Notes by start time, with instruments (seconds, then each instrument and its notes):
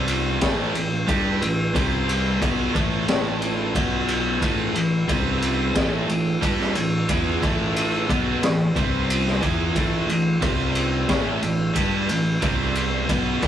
Already playing: fingered electric bass C2, distorted electric guitar C3 G3 C4
0.08 ride
0.41 fingered electric bass A1, distorted electric guitar A2 E3 A3, kick, snare, ride
0.75 fingered electric bass A1, distorted electric guitar A2 E3, ride
1.08 fingered electric bass G2, distorted electric guitar G3 D4 G4, kick, ride
1.41 fingered electric bass A1, distorted electric guitar A2 E3, ride
1.74 fingered electric bass C2, distorted electric guitar C3 G3 C4, kick, ride
2.09 ride
2.41 fingered electric bass B1, distorted electric guitar B2 F#3 B3, kick, ride
2.75 fingered electric bass A1, distorted electric guitar A2 E3 A3, kick, ride
3.08 snare, ride
3.42 ride
3.75 fingered electric bass B1, distorted electric guitar B2 F#3 B3, kick, ride
4.08 ride
4.41 fingered electric bass A1, distorted electric guitar A2 E3 A3, kick, ride
4.74 fingered electric bass A1, distorted electric guitar A2 E3, ride
5.07 fingered electric bass C2, distorted electric guitar C3 G3 C4, kick, ride
5.42 ride
5.74 fingered electric bass A1, distorted electric guitar A2 E3 A3, kick, snare, ride
6.08 fingered electric bass A1, distorted electric guitar A2 E3, ride
6.41 fingered electric bass G2, distorted electric guitar G3 D4 G4, kick, ride
6.60 snare
6.75 fingered electric bass A1, distorted electric guitar A2 E3, ride
7.09 fingered electric bass E2, distorted electric guitar E3 B3 E4, kick, ride
7.42 fingered electric bass A1, distorted electric guitar A2 E3 A3, kick, ride
7.76 ride
8.09 fingered electric bass B1, distorted electric guitar B2 F#3 B3, kick, ride
8.41 fingered electric bass A1, distorted electric guitar A2 E3, snare, ride
8.75 fingered electric bass C2, distorted electric guitar C3 G3 C4, kick, ride
9.10 ride
9.27 snare
9.42 fingered electric bass E2, distorted electric guitar E3 B3 E4, kick, ride
9.75 fingered electric bass A1, distorted electric guitar A2 E3 A3, kick, ride
10.08 fingered electric bass A1, distorted electric guitar A2 E3, ride
10.41 fingered electric bass C2, distorted electric guitar C3 G3 C4, kick, ride
10.75 ride
11.08 fingered electric bass A1, distorted electric guitar A2 E3 A3, kick, snare, ride
11.42 fingered electric bass A1, distorted electric guitar A2 E3, ride
11.75 fingered electric bass G2, distorted electric guitar G3 D4 G4, kick, ride
12.09 fingered electric bass A1, distorted electric guitar A2 E3, ride
12.42 fingered electric bass C2, distorted electric guitar C3 G3 C4, kick, ride
12.75 ride
13.09 fingered electric bass B1, distorted electric guitar B2 F#3 B3, kick, ride
13.42 fingered electric bass A1, distorted electric guitar A2 E3 A3, kick, ride